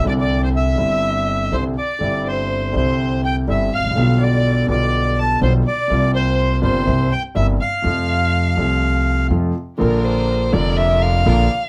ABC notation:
X:1
M:4/4
L:1/16
Q:1/4=123
K:Cmix
V:1 name="Bandoneon"
d d2 c e8 c2 d2- | d2 c4 c4 g2 e2 f2- | f2 d4 d4 a2 c2 d2- | d2 c4 c4 g2 e2 f2- |
f12 z4 | z16 |]
V:2 name="Violin"
d d2 c e8 c2 d2- | d2 c4 c4 g2 e2 f2- | f2 d4 d4 a2 c2 d2- | d2 c4 c4 g2 e2 f2- |
f12 z4 | B2 c4 d2 e2 f6 |]
V:3 name="String section"
z16 | z16 | z16 | z16 |
z16 | [DFB]6 [DFB]6 [DFB]2 z2 |]
V:4 name="Grand piano" clef=bass
[C,,C,D,G,CE]6 [G,,,G,,D,G,CE]6 [C,,C,D,G,CE]2 z2 | [G,,,G,,D,G,CE]6 [C,,C,D,G,CE]6 [G,,,G,,D,G,CE]2 z/2 _A,,,/2 =A,,,/2 B,,,/2 | [=B,,,=B,,D,G,=B,F]6 [B,,,B,,D,G,B,F]6 [B,,,B,,D,G,B,F]2 z2 | [C,,C,G,B,F]6 [G,,,G,,C,G,B,F]2 [C,,C,G,B,E]2 z2 [G,,,G,,C,G,B,E]2 z2 |
[F,,C,F,A,F]6 [C,,C,F,A,F]6 [F,,C,F,A,F]2 z2 | [B,,,B,,D,F,B,F]6 [F,,,F,,D,F,B,F]6 [B,,,B,,D,F,B,F]2 z2 |]
V:5 name="Upright bass" clef=bass
C,,4- C,,3/2 z/2 G,,,4- G,,,3/2 z/2 C,,3/2 z2 z/2 | G,,,4- G,,,3/2 z/2 C,,4- C,,3/2 z/2 G,,,3/2 z _A,,,/2 =A,,,/2 B,,,/2 | =B,,,4- B,,,3/2 z/2 B,,,4- B,,,3/2 z/2 B,,,3/2 z2 z/2 | C,,4- C,,3/2 z/2 G,,,3/2 z/2 C,,3/2 z2 z/2 G,,,3/2 z2 z/2 |
F,,4- F,,3/2 z/2 C,,4- C,,3/2 z/2 F,,3/2 z2 z/2 | B,,,4- B,,,3/2 z/2 F,,,4- F,,,3/2 z/2 B,,,3/2 z2 z/2 |]